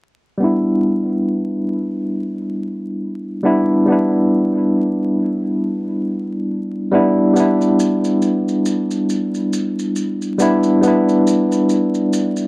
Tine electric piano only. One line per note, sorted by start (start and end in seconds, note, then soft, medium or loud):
0.37 3.39 G3 medium
0.37 3.40 B3 medium
0.42 3.41 D4 medium
0.42 3.42 E4 medium
3.43 3.83 G3 medium
3.43 3.84 B3 medium
3.43 3.84 D4 medium
3.43 3.84 E4 medium
3.86 6.87 G3 medium
3.86 6.88 B3 medium
3.90 6.89 D4 medium
3.90 6.90 E4 medium
6.91 7.31 G3 medium
6.91 7.31 B3 medium
6.91 7.32 D4 medium
6.91 7.32 E4 medium
7.33 10.34 G3 medium
7.33 10.35 B3 medium
7.33 10.36 D4 medium
7.40 10.38 E4 medium
10.38 10.78 G3 medium
10.38 10.79 B3 medium
10.38 10.79 D4 medium
10.38 10.80 E4 loud
10.81 12.47 G3 medium
10.81 12.47 B3 medium
10.85 12.47 D4 medium
10.85 12.47 E4 medium